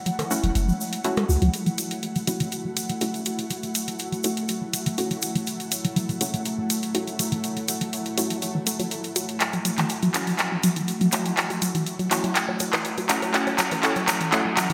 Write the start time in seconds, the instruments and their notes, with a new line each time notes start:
Already playing: synth texture F#3 G#3, ambient pad A3 E4 F#5
0.06 synth arpeggio sound F#3, closed hi-hat, shaker
0.19 synth arpeggio sound E3, closed hi-hat, percussion blips, shaker
0.31 synth stab A3 C#4 E4 F#4, shaker
0.43 sub bass E1, synth arpeggio sound F#3, closed hi-hat, shaker
0.55 sub bass F#1, closed hi-hat, shaker
0.68 synth arpeggio sound F#3, shaker
0.81 shaker
0.93 closed hi-hat, shaker
1.04 synth stab A3 C#4 E4 F#4, closed hi-hat, shaker
1.17 synth arpeggio sound G#3, closed hi-hat, percussion blips, shaker
1.29 sub bass C#2, synth arpeggio sound F#4, shaker
1.42 sub bass C#2, synth arpeggio sound F#3, closed hi-hat, shaker
1.54 synth texture F#3 F#4, closed hi-hat, shaker
1.66 synth arpeggio sound F#3, closed hi-hat, shaker
1.78 closed hi-hat, shaker
1.91 closed hi-hat, shaker
2.03 closed hi-hat, shaker
2.16 synth arpeggio sound F#3, closed hi-hat, shaker
2.27 synth arpeggio sound F#3, synth stab A3 C#4 E4 F#4, closed hi-hat, shaker
2.40 synth arpeggio sound E3, closed hi-hat, shaker
2.52 closed hi-hat, shaker
2.65 synth arpeggio sound F#3
2.77 closed hi-hat, shaker
2.89 synth arpeggio sound F#3, closed hi-hat, shaker
3.01 synth stab A3 C#4 E4 F#4, closed hi-hat, shaker
3.14 closed hi-hat, shaker
3.26 closed hi-hat, shaker
3.39 synth arpeggio sound F#3, closed hi-hat, shaker
3.50 synth arpeggio sound F#3, closed hi-hat, shaker
3.63 synth arpeggio sound E3, closed hi-hat, shaker
3.75 closed hi-hat, shaker
3.88 synth arpeggio sound F#3, closed hi-hat, shaker
3.99 closed hi-hat, shaker
4.12 synth arpeggio sound F#3, closed hi-hat, shaker
4.24 synth stab A3 C#4 E4 F#4, closed hi-hat, shaker
4.37 closed hi-hat, shaker
4.48 closed hi-hat, shaker
4.62 synth arpeggio sound F#3
4.73 synth arpeggio sound F#3, closed hi-hat, shaker
4.86 synth arpeggio sound E3, closed hi-hat, shaker
4.98 synth stab A3 C#4 E4 F#4, closed hi-hat, shaker
5.11 synth arpeggio sound F#3, closed hi-hat, shaker
5.22 closed hi-hat, shaker
5.35 synth arpeggio sound F#3, closed hi-hat, shaker
5.47 synth texture A3, closed hi-hat, shaker
5.60 closed hi-hat, shaker
5.72 closed hi-hat, shaker
5.85 synth arpeggio sound F#3, closed hi-hat, shaker
5.96 synth arpeggio sound F#3, closed hi-hat, shaker
6.09 synth arpeggio sound E3, closed hi-hat, shaker
6.21 synth stab A3 C#4 E4 F#4, closed hi-hat, shaker
6.34 synth arpeggio sound F#3, closed hi-hat, shaker
6.45 closed hi-hat, shaker
6.58 synth arpeggio sound F#3
6.70 closed hi-hat, shaker
6.82 closed hi-hat, shaker
6.95 synth stab A3 C#4 E4 F#4, closed hi-hat, shaker
7.07 synth arpeggio sound F#3, closed hi-hat, shaker
7.19 synth arpeggio sound F#3, closed hi-hat, shaker
7.32 synth arpeggio sound E3, closed hi-hat, shaker
7.44 closed hi-hat, shaker
7.56 synth arpeggio sound F#3, closed hi-hat, shaker
7.68 closed hi-hat, shaker
7.81 synth arpeggio sound F#3, closed hi-hat, shaker
7.93 closed hi-hat, shaker
8.05 closed hi-hat, shaker
8.18 synth stab A3 C#4 E4 F#4, closed hi-hat, shaker
8.30 synth arpeggio sound F#3, closed hi-hat, shaker
8.42 synth arpeggio sound F#3, closed hi-hat, shaker
8.55 synth arpeggio sound E3
8.67 synth arpeggio sound A3, closed hi-hat, shaker
8.80 synth arpeggio sound F#3, closed hi-hat, shaker
8.91 closed hi-hat, shaker
9.04 closed hi-hat, shaker
9.16 synth arpeggio sound F#4, closed hi-hat, shaker
9.29 closed hi-hat, shaker
9.40 synth texture F#4, clap, closed hi-hat, shaker
9.53 synth arpeggio sound F#3, closed hi-hat, shaker
9.65 synth arpeggio sound F#3, closed hi-hat, shaker
9.78 synth arpeggio sound E3, clap, closed hi-hat, shaker
9.89 closed hi-hat, shaker
10.02 synth arpeggio sound F#3, closed hi-hat, shaker
10.14 synth stab A3 C#4 E4 F#4, clap, closed hi-hat, shaker
10.27 synth arpeggio sound F#3, closed hi-hat, shaker
10.38 clap, closed hi-hat, shaker
10.52 synth arpeggio sound F#3
10.63 synth arpeggio sound F#3, closed hi-hat, shaker
10.76 synth arpeggio sound E3, closed hi-hat, shaker
10.88 closed hi-hat, shaker
11.01 synth arpeggio sound F#3, closed hi-hat, shaker
11.12 synth stab A3 C#4 E4 F#4, clap, closed hi-hat, shaker
11.26 synth arpeggio sound F#3, closed hi-hat, shaker
11.37 clap, closed hi-hat, shaker
11.50 synth arpeggio sound F#3, closed hi-hat, shaker
11.62 synth arpeggio sound F#3, closed hi-hat, shaker
11.75 synth arpeggio sound E3, closed hi-hat, shaker
11.86 closed hi-hat, shaker
11.99 synth arpeggio sound F#3, closed hi-hat, shaker
12.11 synth stab A3 C#4 E4 F#4, clap, closed hi-hat, shaker
12.24 synth arpeggio sound F#3, closed hi-hat, shaker
12.35 clap, closed hi-hat, shaker
12.49 synth arpeggio sound F#3
12.60 synth arpeggio sound F#3, closed hi-hat, shaker
12.73 synth arpeggio sound E3, clap, closed hi-hat, shaker
12.85 closed hi-hat, shaker
12.98 synth arpeggio sound F#3, closed hi-hat, shaker
13.09 synth stab A3 C#4 E4 F#4, clap, closed hi-hat, shaker
13.22 synth arpeggio sound F#3, closed hi-hat, shaker
13.34 synth texture A3, synth stab A3 C#4 E4 F#4, clap, closed hi-hat, shaker
13.47 synth arpeggio sound F#3, closed hi-hat, shaker
13.58 synth arpeggio sound F#3, clap, closed hi-hat, shaker
13.71 synth arpeggio sound E3, closed hi-hat, shaker
13.83 synth stab A3 C#4 E4 F#4, clap, closed hi-hat, shaker
13.96 synth arpeggio sound F#3, closed hi-hat, shaker
14.08 synth arpeggio sound F#3, clap, closed hi-hat, shaker
14.20 synth arpeggio sound E3, closed hi-hat, shaker
14.32 synth stab A3 C#4 E4 F#4, clap, closed hi-hat, shaker
14.45 synth arpeggio sound F#3
14.57 synth arpeggio sound F#3, clap, closed hi-hat, shaker
14.70 synth arpeggio sound E3, closed hi-hat, shaker